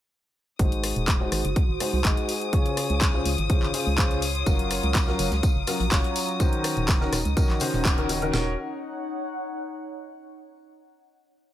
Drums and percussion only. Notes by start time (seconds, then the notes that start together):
0.59 kick, closed hi-hat
0.72 closed hi-hat
0.84 cross-stick, open hi-hat
0.96 closed hi-hat
1.08 kick, clap, closed hi-hat
1.32 cross-stick, open hi-hat
1.45 closed hi-hat
1.56 kick, closed hi-hat
1.80 cross-stick, open hi-hat
2.05 kick, clap, closed hi-hat
2.17 closed hi-hat
2.29 open hi-hat
2.41 closed hi-hat
2.53 kick, closed hi-hat
2.66 closed hi-hat
2.77 cross-stick, open hi-hat
2.90 closed hi-hat
3.01 kick, clap, closed hi-hat
3.25 open hi-hat
3.38 closed hi-hat
3.50 kick, closed hi-hat
3.63 clap
3.74 open hi-hat
3.98 kick, clap, closed hi-hat
4.11 closed hi-hat
4.22 open hi-hat
4.35 closed hi-hat
4.46 kick, closed hi-hat, tambourine
4.59 closed hi-hat
4.70 cross-stick, open hi-hat, tambourine
4.83 closed hi-hat
4.94 kick, snare, clap, closed hi-hat, tambourine
5.07 snare
5.19 open hi-hat, tambourine
5.31 snare, closed hi-hat
5.43 kick, closed hi-hat, tambourine
5.67 cross-stick, open hi-hat, tambourine
5.80 closed hi-hat
5.92 kick, snare, clap, closed hi-hat, open hi-hat
6.04 closed hi-hat
6.16 open hi-hat, tambourine
6.28 closed hi-hat
6.40 kick, closed hi-hat, tambourine
6.53 closed hi-hat
6.64 cross-stick, open hi-hat, tambourine
6.77 closed hi-hat
6.87 kick, snare, clap, closed hi-hat, tambourine
7.01 snare
7.12 cross-stick, snare, open hi-hat, tambourine
7.25 closed hi-hat
7.37 kick, closed hi-hat, tambourine
7.49 snare, clap
7.60 open hi-hat, tambourine
7.73 snare
7.85 kick, snare, clap, closed hi-hat, tambourine
7.98 closed hi-hat
8.09 open hi-hat, tambourine
8.22 closed hi-hat
8.34 snare